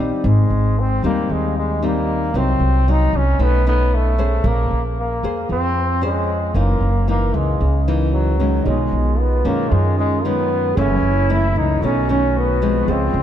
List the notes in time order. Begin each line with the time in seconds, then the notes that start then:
Already playing: D#3 G3 C4
0.00 D#4
0.24 G#1 G#2 G#3
0.50 G#1
0.80 C4
1.03 D#2 G3 A#3 C4 D#4
1.29 D#2 D#3 G#3
1.59 G#3
1.83 G3 A#3 C4 D#4
2.34 C2 C3 F#3 A#3 C4 D#4
2.60 C2
2.88 F#3 A#3 D#4
3.13 C2 C#4
3.39 B1 B2 A3 C#4 D#4
3.43 B3
3.67 A3 B3 C#4 D#4
3.94 A3
4.18 C#4 G#4 C5
4.44 A#1 A#3
4.71 A#1
5.00 A#3
5.23 F2 G#4 C5
5.49 F2 F3 C4
6.01 G#3 C#4 G#4 C5
6.54 F#1 F#2 E3 A#3 D#4
6.80 F#1
7.08 E3 A#3 D#4
7.34 C#2 G#3
7.60 C#2 C#3
7.88 E3 A#3 D#4
8.13 F#3
8.40 D#3 G#3 C#4
8.63 B1 B2 D#4 F4 G#4 C#5
8.67 G#3 D#5
8.92 B1
9.19 B3
9.45 F#2 D#3 G#3 A#3 C#4
9.71 F#2 G#3
9.97 G#3 D#4 G#4 C#5 D#5
10.25 D#3 G#3 B3 C#4
10.75 F#1 F#2 E3 A3 C#4 E4 G#4 A4 C#5
10.81 E5
11.03 F#1
11.30 E3 A3 C#4 E4
11.56 C#2 D#4
11.79 B1 B2 D#3 F#4 A4 C#5
11.84 A3 C#4 D#5
12.09 D#3 A3 C#4
12.37 B3
12.62 F3 G#3 C4
12.85 C#2 C#3 F4 G#4 C5
12.90 C4 D#5
13.14 C#2